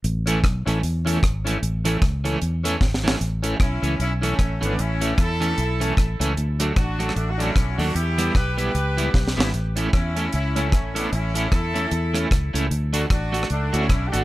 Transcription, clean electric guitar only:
X:1
M:4/4
L:1/8
Q:"Swing" 1/4=152
K:Amix
V:1 name="Clean electric guitar"
z [E,A,C] z [E,A,C] z [E,A,C] z [E,A,C] | z [E,A,C] z [E,A,C] z [E,A,C] z [E,A,C] | z [E,A,C] z [E,A,C] z [E,A,C] z [E,A,C] | z [E,A,C] z [E,A,C] z [E,A,C] z [E,A,C] |
z [F,A,D] z [F,A,D] z [F,A,D] z [F,A,D] | z [G,B,E] z [G,B,E] z [G,B,E] z [G,B,E] | z [A,CE] z [A,CE] z [A,CE] z [A,CE] | z [A,CE] z [A,CE] z [A,CE] z [A,CE] |
z [A,DF] z [A,DF] z [A,DF] z [A,DF] |]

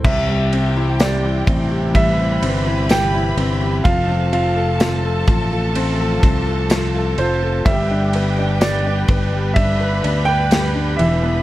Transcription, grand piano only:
X:1
M:4/4
L:1/16
Q:1/4=63
K:C
V:1 name="Grand piano"
e4 d4 e4 g4 | f2 f6 z6 c2 | e4 d4 e3 g3 e2 |]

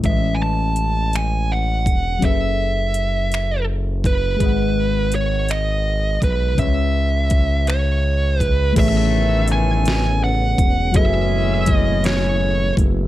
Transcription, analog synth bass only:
X:1
M:6/8
L:1/8
Q:3/8=55
K:F#dor
V:1 name="Analog synth bass" clef=bass
A,,,4- A,,, E,,, | F,,,6 | G,,,4- G,,, B,,, | C,,6 |
A,,,4- A,,, E,,, | F,,,4- F,,, F,,, |]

